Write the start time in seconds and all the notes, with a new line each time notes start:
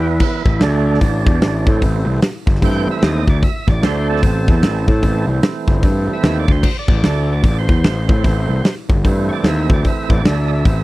Already playing: E2 E3 B3
0.11 E4
0.20 kick, crash
0.46 A1, kick
0.60 D2 D3 A3 D4, snare, open hi-hat
0.94 snare
1.01 A1, kick, open hi-hat
1.26 E2, kick
1.41 A1, snare, open hi-hat
1.67 A2 E3 A3 C4, kick
1.82 A1, kick, open hi-hat
2.06 C2
2.22 muted picked electric bass stroke, snare, open hi-hat
2.47 G1, kick
2.55 snare
2.62 G2 E3 A3 C4 G5, kick, open hi-hat
2.88 E5, muted picked electric bass stroke
3.02 D#2 D#5, snare, open hi-hat
3.27 D2 D5, kick
3.43 E5, kick, open hi-hat
3.68 A1 D5, kick
3.83 D2 D3 A3 D4 C5, snare, open hi-hat
4.09 C4 A4
4.16 snare
4.23 A1, kick, open hi-hat
4.48 E2 E3 A3 C4, kick
4.63 A1, snare, open hi-hat
4.88 A2, kick
5.03 A1, kick, open hi-hat
5.28 C2
5.43 muted picked electric bass stroke, snare, open hi-hat
5.68 G1, kick
5.83 G2 E3 A3 C4, kick, open hi-hat
6.08 muted picked electric bass stroke
6.13 E5
6.23 D#2, snare, open hi-hat
6.40 D5
6.48 D2 C5, kick
6.63 kick, crash
6.79 D5
6.88 A1, kick
7.03 D2 D3 A3 D4, snare, open hi-hat
7.32 D5
7.43 A1, kick, open hi-hat
7.59 C5
7.69 E2, kick
7.84 A1, snare, open hi-hat
8.08 A2 E3 A3 C4, kick
8.24 A1, kick, open hi-hat
8.49 C2
8.64 muted picked electric bass stroke, snare, open hi-hat
8.90 G1, kick
9.05 G2 E3 A3 C4, kick, open hi-hat
9.29 C#5 D5, muted picked electric bass stroke
9.44 D#2, snare, open hi-hat
9.48 E5
9.69 D2 C#5, kick
9.74 D5
9.84 E5, kick, open hi-hat
10.10 A1 D5, kick
10.24 D2 D3 A3 D4 E5, snare, open hi-hat
10.48 D#5
10.53 E5
10.65 A1 E3 A3 C4, kick, open hi-hat